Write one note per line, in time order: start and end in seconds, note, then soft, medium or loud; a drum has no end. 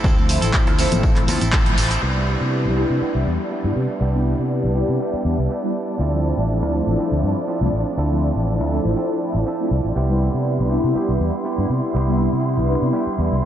0.04 0.36 D2 loud
0.04 0.17 F3 medium
0.04 0.18 C4 medium
0.04 0.17 E4 medium
0.04 0.15 A4 loud
0.04 kick loud
0.04 tambourine soft
0.04 tambourine medium
0.17 0.76 F3 medium
0.17 0.76 A3 medium
0.17 0.76 C4 medium
0.17 0.43 C4 soft
0.17 0.42 E4 soft
0.17 0.76 E4 medium
0.17 0.40 A4 medium
0.17 tambourine soft
0.29 open hi-hat loud
0.29 tambourine medium
0.41 0.67 A1 medium
0.41 0.52 C4 medium
0.41 0.53 E4 medium
0.41 0.53 A4 medium
0.41 closed hi-hat medium
0.41 tambourine soft
0.53 0.67 F3 medium
0.53 0.67 C4 medium
0.53 0.66 E4 loud
0.53 0.65 A4 loud
0.53 kick loud
0.53 clap loud
0.53 tambourine soft
0.66 0.85 D2 medium
0.66 0.77 C4 medium
0.66 0.78 E4 medium
0.66 0.78 A4 medium
0.66 closed hi-hat soft
0.66 tambourine soft
0.77 1.26 F3 medium
0.77 1.25 F3 loud
0.77 1.25 A3 medium
0.77 1.28 C4 medium
0.77 1.26 C4 medium
0.77 1.26 E4 loud
0.77 1.29 E4 medium
0.77 1.29 A4 medium
0.77 open hi-hat medium
0.77 tambourine medium
0.77 tambourine loud
0.92 1.28 A1 medium
0.92 closed hi-hat medium
0.92 tambourine soft
0.92 high conga medium
0.92 low conga medium
1.03 kick loud
1.03 tambourine soft
1.03 tambourine medium
1.16 clap soft
1.16 closed hi-hat medium
1.16 tambourine soft
1.27 1.38 D2 medium
1.27 1.41 F3 medium
1.27 1.43 F3 medium
1.27 1.43 A3 medium
1.27 1.42 C4 medium
1.27 1.43 C4 medium
1.27 1.43 E4 medium
1.27 1.41 E4 medium
1.27 1.39 A4 medium
1.27 open hi-hat loud
1.27 tambourine medium
1.27 high conga medium
1.40 1.73 A1 medium
1.40 1.52 C4 soft
1.40 1.53 E4 medium
1.40 1.52 A4 medium
1.40 closed hi-hat medium
1.40 tambourine soft
1.52 1.76 F3 medium
1.52 1.77 C4 loud
1.52 1.78 E4 medium
1.52 1.78 A4 loud
1.52 kick loud
1.52 clap loud
1.52 tambourine medium
1.66 1.74 F3 medium
1.66 1.74 A3 medium
1.66 1.74 C4 medium
1.66 1.75 E4 loud
1.66 closed hi-hat medium
1.66 tambourine soft
1.77 1.96 A1 loud
1.77 1.91 F3 medium
1.77 1.91 C4 medium
1.77 1.91 E4 medium
1.77 1.89 A4 medium
1.77 open hi-hat medium
1.77 tambourine loud
1.77 tambourine medium
1.90 2.02 C4 soft
1.90 2.02 E4 medium
1.90 2.02 A4 medium
1.90 closed hi-hat medium
1.90 tambourine soft
2.02 2.35 C2 medium
2.02 2.77 G3 medium
2.02 2.77 B3 medium
2.02 9.97 D4 medium
2.02 2.78 E4 medium
2.02 2.75 G4 medium
2.02 9.97 D5 medium
2.15 2.74 G3 medium
2.15 2.74 B3 medium
2.15 2.74 D4 medium
2.15 2.75 E4 medium
2.41 2.67 C3 medium
2.66 2.83 C2 medium
2.76 3.24 G3 medium
2.76 3.24 B3 medium
2.76 3.01 B3 soft
2.76 3.24 D4 medium
2.76 3.24 E4 loud
2.76 3.02 E4 soft
2.76 3.01 G4 medium
2.90 2.98 C3 medium
3.01 3.49 G3 medium
3.01 3.50 B3 medium
3.01 3.52 E4 medium
3.01 3.52 G4 medium
3.01 muted fingered electric bass stroke soft
3.15 3.23 C2 medium
3.26 3.36 E2 medium
3.26 3.41 G3 medium
3.26 3.41 B3 medium
3.26 3.41 D4 medium
3.26 3.41 E4 medium
3.51 3.99 G3 medium
3.51 4.00 B3 medium
3.51 4.01 E4 medium
3.51 4.01 G4 medium
3.64 3.73 G2 medium
3.64 3.72 G3 medium
3.64 3.73 B3 medium
3.64 3.73 D4 medium
3.64 3.73 E4 medium
3.76 3.86 C3 medium
4.00 4.33 C2 medium
4.00 4.75 G3 medium
4.00 4.75 B3 medium
4.00 4.76 E4 medium
4.00 4.74 G4 medium
4.14 4.72 G3 medium
4.14 4.73 B3 medium
4.14 4.73 D4 medium
4.14 4.73 E4 medium
4.39 4.65 C3 medium
4.64 4.81 C2 medium
4.75 5.22 G3 medium
4.75 5.22 B3 medium
4.75 5.00 B3 soft
4.75 5.22 D4 medium
4.75 5.22 E4 loud
4.75 5.00 E4 soft
4.75 5.00 G4 medium
4.89 4.97 C3 medium
4.99 5.48 G3 medium
4.99 5.49 B3 medium
4.99 5.51 E4 medium
4.99 5.51 G4 medium
5.14 muted fingered electric bass stroke soft
5.25 5.35 E2 medium
5.25 5.39 G3 medium
5.25 5.40 B3 medium
5.25 5.40 D4 medium
5.25 5.40 E4 medium
5.38 5.47 C2 medium
5.49 5.98 G3 medium
5.49 5.99 B3 medium
5.49 6.01 E4 medium
5.49 6.00 G4 medium
5.63 5.71 G3 medium
5.63 5.71 B3 medium
5.63 5.71 D4 medium
5.63 5.71 E4 loud
5.98 6.32 D2 medium
5.98 6.96 F3 medium
5.98 6.98 C4 medium
5.98 6.99 E4 medium
6.03 6.99 A4 medium
6.12 6.71 F3 medium
6.12 6.71 A3 medium
6.12 6.71 C4 medium
6.12 6.72 E4 medium
6.37 6.62 A1 medium
6.62 6.80 D2 medium
6.74 7.20 F3 medium
6.74 7.21 A3 medium
6.74 7.21 C4 medium
6.74 7.21 E4 loud
6.87 6.95 A1 medium
6.98 7.46 F3 medium
6.98 7.48 C4 medium
6.98 7.49 E4 medium
6.98 7.49 A4 medium
6.98 muted fingered electric bass stroke soft
7.12 7.20 D2 medium
7.23 7.33 G2 medium
7.23 7.38 F3 medium
7.23 7.38 A3 medium
7.23 7.38 C4 medium
7.23 7.38 E4 medium
7.47 7.96 F3 medium
7.47 7.97 C4 medium
7.47 7.98 E4 medium
7.47 7.98 A4 medium
7.61 7.70 C2 medium
7.61 7.69 F3 medium
7.61 7.69 A3 medium
7.61 7.69 C4 medium
7.61 7.70 E4 medium
7.73 7.82 A1 medium
7.97 8.30 D2 medium
7.97 8.72 F3 medium
7.97 8.74 C4 medium
7.97 8.73 E4 loud
7.97 8.70 A4 medium
8.10 8.69 F3 medium
8.10 8.69 A3 medium
8.10 8.69 C4 medium
8.10 8.70 E4 medium
8.36 8.60 A1 medium
8.60 8.78 D2 medium
8.71 9.19 F3 medium
8.71 9.19 A3 medium
8.71 9.19 C4 medium
8.71 8.96 C4 soft
8.71 9.19 E4 loud
8.71 8.97 E4 soft
8.71 8.97 A4 medium
8.85 8.94 A1 medium
8.96 9.44 F3 medium
8.96 9.46 C4 medium
8.96 9.47 E4 medium
8.96 9.47 A4 medium
9.21 9.36 F3 medium
9.21 9.36 A3 medium
9.21 9.36 C4 medium
9.21 9.37 E4 medium
9.35 9.43 A1 medium
9.45 9.95 F3 medium
9.45 9.96 C4 medium
9.45 9.96 E4 medium
9.45 9.97 A4 medium
9.59 9.68 F3 medium
9.59 9.68 A3 medium
9.59 9.68 C4 medium
9.59 9.68 E4 medium
9.71 9.81 C2 medium
9.85 9.93 A1 medium
9.95 10.28 C2 medium
9.95 10.70 G3 medium
9.95 10.71 B3 medium
9.95 13.45 E4 medium
9.95 10.71 E4 medium
9.95 10.68 G4 medium
9.95 13.45 C6 medium
10.09 10.67 G3 medium
10.09 10.68 B3 medium
10.09 10.68 D4 medium
10.09 10.68 E4 medium
10.34 10.61 C3 medium
10.59 10.77 C2 medium
10.70 11.17 G3 medium
10.70 11.17 B3 medium
10.70 10.94 B3 soft
10.70 11.18 D4 medium
10.70 11.18 E4 loud
10.70 10.95 E4 soft
10.70 10.95 G4 medium
10.84 10.92 C3 medium
10.94 11.43 G3 medium
10.94 11.44 B3 medium
10.94 11.46 E4 medium
10.94 11.46 G4 medium
10.94 muted fingered electric bass stroke soft
11.09 11.17 C2 medium
11.20 11.30 E2 medium
11.20 11.35 G3 medium
11.20 11.35 B3 medium
11.20 11.35 D4 medium
11.20 11.35 E4 medium
11.44 11.92 G3 medium
11.44 11.94 B3 medium
11.44 11.96 E4 medium
11.44 11.95 G4 medium
11.58 11.67 G2 medium
11.58 11.66 G3 medium
11.58 11.66 B3 medium
11.58 11.66 D4 medium
11.58 11.67 E4 medium
11.70 11.79 C3 medium
11.93 12.27 C2 medium
11.93 12.92 G3 medium
11.93 12.93 B3 medium
11.93 12.95 E4 medium
11.98 12.95 G4 loud
12.07 12.66 G3 medium
12.07 12.66 B3 medium
12.07 12.66 D4 medium
12.07 12.66 E4 medium
12.33 12.59 C3 medium
12.57 12.75 C2 medium
12.68 13.15 G3 medium
12.68 13.15 B3 medium
12.68 13.16 D4 medium
12.68 13.16 E4 loud
12.82 12.90 C3 medium
12.93 13.41 G3 medium
12.93 13.42 B3 medium
12.93 13.44 E4 medium
12.93 13.44 G4 medium
13.07 muted fingered electric bass stroke soft
13.18 13.28 E2 medium
13.18 13.33 G3 medium
13.18 13.33 B3 medium
13.18 13.33 D4 medium
13.18 13.33 E4 medium
13.32 13.40 C2 medium